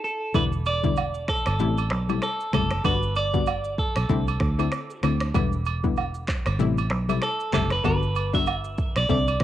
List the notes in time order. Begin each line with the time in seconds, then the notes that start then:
0.04 A4
0.34 E1 D3 G3 B3 E4 B4, kick, high agogo, shaker
0.52 shaker
0.65 D5, high agogo, shaker
0.84 D3 G3 B3 E4, kick, shaker
0.96 high agogo, low woodblock, shaker
1.14 shaker
1.28 A4, finger snap, kick, cross-stick
1.46 G1, finger snap, cross-stick, high agogo, shaker
1.59 A1 C3 G3 A3 E4, shaker
1.78 high agogo, shaker
1.90 B1, finger snap, cross-stick
2.09 C3 G3 A3 E4, high agogo, shaker
2.22 A4, finger snap, cross-stick, shaker
2.40 shaker
2.53 F#1 C3 G3 A3 E4 A4, finger snap, kick, cross-stick, high agogo, shaker
2.71 finger snap, cross-stick, shaker
2.84 G1 D3 G3 B3 F#4 B4, kick, high agogo, shaker
3.03 shaker
3.15 D5, high agogo, shaker
3.34 D3 G3 B3 F#4, kick, shaker
3.46 high agogo, low woodblock, shaker
3.64 shaker
3.78 A4, kick
3.96 B1, finger snap, cross-stick, high agogo, shaker
4.09 C2 D3 A3 C4 E4, kick, shaker
4.28 high agogo, shaker
4.40 D2, finger snap, kick, cross-stick
4.59 D3 A3 C4 E4, high agogo, shaker
4.72 finger snap, cross-stick, shaker
4.90 shaker
5.03 D2 D3 A3 C4 E4, finger snap, cross-stick, high agogo, shaker
5.20 finger snap, cross-stick, shaker
5.34 E1 D3 G3 B3 E4, kick, high agogo, shaker
5.52 shaker
5.65 high agogo, shaker
5.84 D3 G3 B3 E4, kick, shaker
5.96 high agogo, low woodblock, shaker
6.14 shaker
6.28 finger snap, kick, cross-stick, clap
6.46 G1, finger snap, cross-stick, high agogo, shaker
6.59 A1 C3 G3 A3 E4, shaker
6.78 high agogo, shaker
6.90 B1, finger snap, cross-stick
7.09 C3 G3 A3 E4, high agogo, shaker
7.22 A4, finger snap, cross-stick, shaker
7.40 shaker
7.53 F#1 C3 G3 A3 E4 A4, finger snap, kick, cross-stick, clap, high agogo, shaker
7.70 B4, finger snap, cross-stick, shaker
7.84 G1 D3 G3 B3 F#4 B4, kick, high agogo, shaker
8.02 shaker
8.15 high agogo, shaker
8.34 D3 G3 B3 F#4 E5, kick, shaker
8.46 high agogo, low woodblock, shaker
8.64 shaker
8.78 kick, shaker
8.96 B1 D5, finger snap, cross-stick, high agogo, shaker
9.09 C2 D3 A3 C4 E4 D5, kick, shaker
9.27 high agogo, shaker
9.40 D2, finger snap, kick, cross-stick, shaker